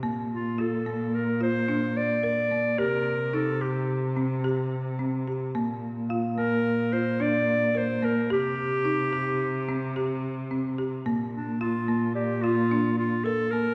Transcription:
<<
  \new Staff \with { instrumentName = "Celesta" } { \time 5/4 \key bes \major \tempo 4 = 109 r1 r4 | r1 r4 | r4 f''2~ f''8 r4. | r1 r4 |
r2 d''2~ d''8 r8 | }
  \new Staff \with { instrumentName = "Clarinet" } { \time 5/4 \key bes \major r8 f'8 a'4 bes'8 c''4 d''4. | bes'4 a'8 g'4 r2 r8 | r4. bes'4 c''8 d''4 c''8 bes'8 | g'1 r4 |
r8 d'8 f'4 g'8 f'4 f'8 a'8 bes'8 | }
  \new Staff \with { instrumentName = "Marimba" } { \time 5/4 \key bes \major bes4 f'8 bes4 f'8 d'4 bes'8 bes8 | g'4 ees'8 g'4 c'8 g'4 c'8 g'8 | bes4 f'8 bes4 f'8 d'4 bes'8 bes8 | g'4 ees'8 g'4 c'8 g'4 c'8 g'8 |
bes4 f'8 bes4 f'8 d'4 bes'8 bes8 | }
  \new Staff \with { instrumentName = "Cello" } { \clef bass \time 5/4 \key bes \major bes,1~ bes,4 | c1~ c4 | bes,1~ bes,4 | c1~ c4 |
bes,1~ bes,4 | }
>>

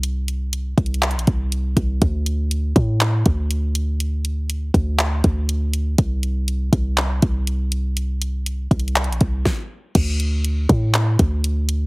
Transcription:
<<
  \new Staff \with { instrumentName = "808-style bass" } { \clef bass \time 4/4 \key d \phrygian \tempo 4 = 121 c,4. c,8. bes,,16 c,4 c,8 | d,4. a,4 d,4.~ | d,4. d,4 d,4. | c,4. c,4 c,4.~ |
c,4. c,8. bes,,16 c,8 r4 | d,4. a,4 d,4. | }
  \new DrumStaff \with { instrumentName = "Drums" } \drummode { \time 4/4 hh8 hh8 \tuplet 3/2 { hh16 r16 r16 <hh bd>16 hh16 hh16 <hc hh>16 hh16 hh16 <hh bd>16 r16 r16 } hh8 <hh bd>8 | <hh bd>8 hh8 hh8 <hh bd>8 <hc hh>8 <hh bd>8 hh8 hh8 | hh8 hh8 hh8 <hh bd>8 <hc hh>8 <hh bd>8 hh8 hh8 | <hh bd>8 hh8 hh8 <hh bd>8 <hc hh>8 <hh bd>8 hh8 hh8 |
hh8 hh8 \tuplet 3/2 { hh16 r16 r16 <hh bd>16 hh16 hh16 <hc hh>16 hh16 hh16 <hh bd>16 r16 r16 } <bd sn>4 | <cymc hh bd>8 hh8 hh8 <hh bd>8 <hc hh>8 <hh bd>8 hh8 hh8 | }
>>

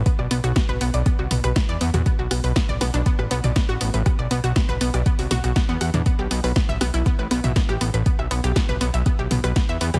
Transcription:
<<
  \new Staff \with { instrumentName = "Synth arpeggio sound" } { \time 4/4 \key b \minor \tempo 4 = 120 b16 d''16 b16 fis'16 b16 b'16 b16 d''16 b16 fis'16 b16 b'16 b16 d''16 b16 fis'16 | b16 fis'16 b16 b'16 b16 d''16 b16 d'16 b16 b'16 b16 d''16 b16 fis'16 b16 b'16 | b16 d''16 b16 fis'16 b16 b'16 b16 d''16 b16 fis'16 fis'16 fis'16 b16 b16 fis''16 d'16 | b16 g'16 b16 b'16 b16 e''16 b16 e'16 b16 b'16 b16 e''16 b16 g'16 b16 b'16 |
b16 e''16 b16 g'16 b16 b'16 b16 e''16 b16 g'16 b16 b'16 b16 e''16 b16 g'16 | }
  \new Staff \with { instrumentName = "Analog synth bass" } { \clef bass \time 4/4 \key b \minor r16 b,,16 b,,16 b,,16 r16 b,,16 b,,16 b,,16 r16 c,16 b,,16 b,,16 r16 e,16 e,16 e,16 | r16 b,,16 b,,16 b,,16 r16 b,,16 b,,16 b,,16 r16 a,,16 b,,16 b,,16 r16 a,,16 a,,16 a,,16 | r16 b,,16 b,,16 b,,16 r16 b,,16 b,,16 b,,16 r16 c,16 b,,16 b,,16 r16 e,16 e,16 e,16 | r16 b,,16 b,,16 b,,16 r16 b,,16 b,,16 b,,16 r16 a,,16 b,,16 b,,16 r16 a,,16 a,,16 a,,16 |
r16 b,,16 b,,16 b,,16 r16 b,,16 b,,16 b,,16 r16 b,,16 b,,16 b,,16 r16 e,16 e,16 e,16 | }
  \new DrumStaff \with { instrumentName = "Drums" } \drummode { \time 4/4 <hh bd>16 ss16 hho16 hh16 <hh bd ss sn>16 toml16 hho16 hh16 <hh bd ss>8 <hho toml>16 <hh ss>16 <hh bd sn>8 hho16 <hh ss toml>16 | <hh bd>8 <hho ss>16 hho16 <hh bd sn>16 toml16 <hho ss sn>16 hh16 <hh bd>16 ss16 hho16 <hh toml>16 <hh bd sn>16 ss16 hho16 hh16 | <hh bd ss>8 hho16 hh16 <hh bd ss sn>16 toml16 hho16 <hh ss>16 <hh bd>16 hho16 <hho sn toml>16 <hh ss>16 <hh bd sn>8 <hho ss>16 <hh toml>16 | <hh bd>8 hho16 <hho ss>16 <hh bd sn>16 toml16 <hho ss sn>16 hh16 <hh bd>8 <hho ss>16 <hh toml>16 <hh bd sn>16 ss16 hho16 hh16 |
<hh bd>16 ss16 hho16 hh16 <hh bd ss sn>16 toml16 hho16 hh16 <hh bd ss>8 <hho toml>16 <hh ss>16 <hh bd sn>8 hho16 <hh ss toml>16 | }
>>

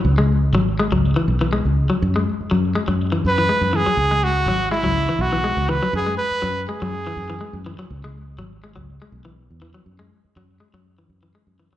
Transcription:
<<
  \new Staff \with { instrumentName = "Trumpet" } { \time 4/4 \key cis \minor \tempo 4 = 122 r1 | r2 r8 b'4 gis'8~ | gis'8 fis'4 e'4 fis'4 b'8 | gis'8 b'4 gis'2 r8 |
r1 | r1 | }
  \new Staff \with { instrumentName = "Clean electric guitar" } { \clef bass \time 4/4 \key cis \minor r16 gis8 r16 fis8 gis16 fis8 e8 e16 gis8 r16 fis16 | r16 gis8 r16 fis8 gis16 fis8 e8 e16 gis8 e16 fis16 | r16 gis8 r16 fis8 gis16 fis8 e8 e16 gis8 e16 fis16 | r16 gis8 r16 fis8 gis16 fis8 e8 e16 gis8 e16 fis16 |
r16 gis8 r16 fis8 gis16 fis8 gis8 e16 r8 e16 fis16 | r16 gis8 r16 fis8 gis16 fis8 e8 e16 gis8 e16 r16 | }
  \new Staff \with { instrumentName = "Fingered electric bass" } { \clef bass \time 4/4 \key cis \minor cis,4 gis,,8. cis,8 r16 b,,8. cis,8 r16 | fis,8 r8 fis,8 r16 fis,8. fis,8 r16 fis,8 r16 | cis,4 gis,,8. cis,8 r16 b,,8. cis,8 r16 | fis,8 r8 fis,8 r16 fis,8. fis,8 r16 fis,8 r16 |
cis,4 gis,,8. cis,8 r16 b,,8. e,8 r16 | fis,8 r8 fis,8 r16 fis,8. fis,8 r16 fis,8 r16 | }
>>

